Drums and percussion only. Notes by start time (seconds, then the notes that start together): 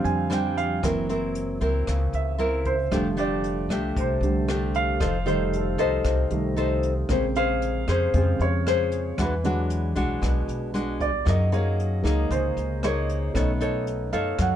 0.05 closed hi-hat
0.31 cross-stick, closed hi-hat
0.58 closed hi-hat
0.83 kick, cross-stick, closed hi-hat
1.10 closed hi-hat
1.35 closed hi-hat
1.61 kick, closed hi-hat
1.87 kick, cross-stick, closed hi-hat
2.13 closed hi-hat
2.39 closed hi-hat
2.65 kick, closed hi-hat
2.92 kick, cross-stick, closed hi-hat
3.18 closed hi-hat
3.44 closed hi-hat
3.70 cross-stick, closed hi-hat
3.96 kick, closed hi-hat
4.23 closed hi-hat
4.49 cross-stick, closed hi-hat
4.75 closed hi-hat
5.01 kick, cross-stick, closed hi-hat
5.27 closed hi-hat
5.53 closed hi-hat
5.79 closed hi-hat
6.05 kick, cross-stick, closed hi-hat
6.30 closed hi-hat
6.57 closed hi-hat
6.83 closed hi-hat
7.09 kick, cross-stick, closed hi-hat
7.35 closed hi-hat
7.62 closed hi-hat
7.88 cross-stick, closed hi-hat
8.14 kick, closed hi-hat
8.40 closed hi-hat
8.67 cross-stick, closed hi-hat
8.92 closed hi-hat
9.18 kick, cross-stick, closed hi-hat
9.44 closed hi-hat
9.70 closed hi-hat
9.96 kick, closed hi-hat
10.22 kick, cross-stick, closed hi-hat
10.49 closed hi-hat
10.75 closed hi-hat
11.01 kick, closed hi-hat
11.27 kick, cross-stick, closed hi-hat
11.54 closed hi-hat
11.80 closed hi-hat
12.06 cross-stick, closed hi-hat
12.31 kick, closed hi-hat
12.57 closed hi-hat
12.83 cross-stick, closed hi-hat
13.09 closed hi-hat
13.35 kick, cross-stick, closed hi-hat
13.61 closed hi-hat
13.87 closed hi-hat
14.13 closed hi-hat
14.39 kick, cross-stick, closed hi-hat